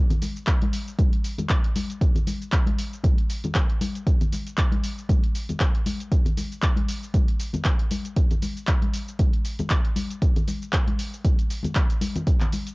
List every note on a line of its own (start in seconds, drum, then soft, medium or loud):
0.10 closed hi-hat medium
0.10 low conga medium
0.10 shaker soft
0.22 open hi-hat loud
0.22 high conga medium
0.22 shaker medium
0.36 shaker soft
0.47 kick loud
0.47 clap loud
0.47 closed hi-hat medium
0.47 shaker soft
0.62 closed hi-hat medium
0.62 high conga loud
0.73 open hi-hat loud
0.73 shaker medium
0.88 shaker soft
0.99 kick loud
0.99 closed hi-hat medium
0.99 high conga loud
0.99 shaker soft
1.13 closed hi-hat medium
1.24 open hi-hat loud
1.24 shaker medium
1.38 closed hi-hat soft
1.38 high conga medium
1.38 low conga medium
1.38 shaker soft
1.50 kick loud
1.50 clap loud
1.50 closed hi-hat medium
1.50 shaker soft
1.64 closed hi-hat medium
1.76 open hi-hat loud
1.76 high conga loud
1.76 shaker medium
1.90 closed hi-hat soft
1.90 shaker soft
2.01 kick loud
2.01 closed hi-hat medium
2.01 shaker soft
2.15 closed hi-hat medium
2.15 low conga medium
2.15 shaker soft
2.27 open hi-hat loud
2.27 high conga medium
2.27 shaker medium
2.42 shaker soft
2.52 kick loud
2.52 clap loud
2.52 closed hi-hat medium
2.52 shaker soft
2.66 closed hi-hat medium
2.66 high conga loud
2.78 open hi-hat loud
2.78 shaker medium
2.93 shaker soft
3.04 kick loud
3.04 closed hi-hat medium
3.04 high conga loud
3.04 shaker soft
3.18 closed hi-hat medium
3.30 open hi-hat loud
3.30 shaker medium
3.44 closed hi-hat soft
3.44 high conga medium
3.44 low conga medium
3.44 shaker soft
3.55 kick loud
3.55 clap loud
3.55 closed hi-hat medium
3.55 shaker soft
3.70 closed hi-hat medium
3.81 open hi-hat loud
3.81 high conga medium
3.81 shaker medium
3.95 closed hi-hat soft
3.95 shaker soft
4.07 kick loud
4.07 closed hi-hat medium
4.07 shaker soft
4.21 closed hi-hat soft
4.21 low conga medium
4.21 shaker soft
4.32 open hi-hat loud
4.32 high conga medium
4.32 shaker medium
4.46 closed hi-hat soft
4.46 shaker soft
4.57 kick loud
4.57 clap loud
4.57 closed hi-hat medium
4.57 shaker soft
4.72 closed hi-hat medium
4.72 high conga loud
4.83 open hi-hat loud
4.83 shaker medium
4.98 shaker soft
5.09 kick loud
5.09 closed hi-hat medium
5.09 high conga loud
5.09 shaker soft
5.23 closed hi-hat medium
5.35 open hi-hat loud
5.35 shaker medium
5.49 closed hi-hat soft
5.49 high conga medium
5.49 low conga medium
5.49 shaker soft
5.60 kick loud
5.60 clap loud
5.60 closed hi-hat medium
5.60 shaker soft
5.75 closed hi-hat medium
5.86 open hi-hat loud
5.86 high conga medium
5.86 shaker medium
6.00 closed hi-hat soft
6.00 shaker soft
6.12 kick loud
6.12 closed hi-hat medium
6.12 shaker soft
6.25 closed hi-hat medium
6.25 low conga medium
6.25 shaker soft
6.37 open hi-hat loud
6.37 high conga medium
6.37 shaker medium
6.52 shaker soft
6.62 kick loud
6.62 clap loud
6.62 closed hi-hat medium
6.62 shaker soft
6.76 closed hi-hat medium
6.76 high conga loud
6.88 open hi-hat loud
6.88 shaker medium
7.03 shaker soft
7.14 kick loud
7.14 closed hi-hat medium
7.14 high conga medium
7.14 shaker soft
7.28 closed hi-hat medium
7.40 open hi-hat loud
7.40 shaker medium
7.53 closed hi-hat soft
7.53 high conga medium
7.53 low conga medium
7.53 shaker soft
7.65 kick loud
7.65 clap loud
7.65 closed hi-hat medium
7.65 shaker soft
7.80 closed hi-hat medium
7.91 open hi-hat loud
7.91 high conga medium
7.91 shaker medium
8.05 closed hi-hat soft
8.05 shaker soft
8.17 kick loud
8.17 closed hi-hat medium
8.17 shaker soft
8.31 closed hi-hat medium
8.31 low conga medium
8.31 shaker soft
8.42 open hi-hat loud
8.42 high conga medium
8.42 shaker medium
8.57 shaker soft
8.67 kick loud
8.67 clap loud
8.67 closed hi-hat medium
8.67 shaker soft
8.82 closed hi-hat medium
8.82 high conga medium
8.94 open hi-hat loud
8.94 shaker medium
9.08 shaker soft
9.19 kick loud
9.19 closed hi-hat medium
9.19 high conga medium
9.19 shaker soft
9.33 closed hi-hat medium
9.45 open hi-hat loud
9.45 shaker medium
9.59 closed hi-hat soft
9.59 high conga medium
9.59 low conga medium
9.59 shaker soft
9.70 kick loud
9.70 clap loud
9.70 closed hi-hat medium
9.70 shaker soft
9.85 closed hi-hat medium
9.96 open hi-hat loud
9.96 high conga medium
9.96 shaker medium
10.10 closed hi-hat soft
10.10 shaker soft
10.22 kick loud
10.22 closed hi-hat medium
10.22 shaker soft
10.36 closed hi-hat medium
10.36 low conga medium
10.36 shaker soft
10.47 open hi-hat loud
10.47 high conga medium
10.47 shaker medium
10.62 shaker soft
10.73 kick loud
10.73 clap loud
10.73 closed hi-hat medium
10.73 shaker soft
10.87 closed hi-hat medium
10.87 high conga loud
10.99 open hi-hat loud
10.99 shaker medium
11.13 shaker soft
11.24 kick loud
11.24 closed hi-hat medium
11.24 high conga medium
11.24 shaker soft
11.39 closed hi-hat medium
11.39 shaker soft
11.50 open hi-hat loud
11.50 shaker medium
11.63 closed hi-hat soft
11.63 high conga medium
11.63 low conga medium
11.63 shaker soft
11.75 kick loud
11.75 clap loud
11.75 closed hi-hat medium
11.75 shaker soft
11.90 closed hi-hat medium
11.90 shaker soft
12.01 open hi-hat loud
12.01 high conga loud
12.01 shaker medium
12.16 closed hi-hat soft
12.16 low conga medium
12.16 shaker soft
12.27 kick loud
12.27 closed hi-hat medium
12.27 shaker soft
12.41 clap soft
12.41 closed hi-hat medium
12.41 low conga medium
12.41 shaker soft
12.53 open hi-hat loud
12.53 high conga medium
12.53 shaker medium
12.67 closed hi-hat soft
12.67 shaker soft